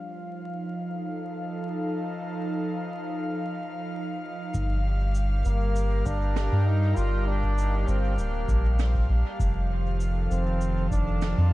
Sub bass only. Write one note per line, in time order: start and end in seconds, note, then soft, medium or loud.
4.54 5.43 G1 medium
5.45 6.03 G1 loud
6.06 6.49 G1 medium
6.52 6.94 G2 medium
6.97 7.85 G1 medium
7.88 8.18 G1 loud
8.18 8.45 D1 loud
8.48 9.06 A#1 medium
9.09 9.23 A#1 loud
9.39 10.28 F1 loud
10.31 10.88 F1 loud
10.91 11.34 F1 medium
11.38 11.53 F2 loud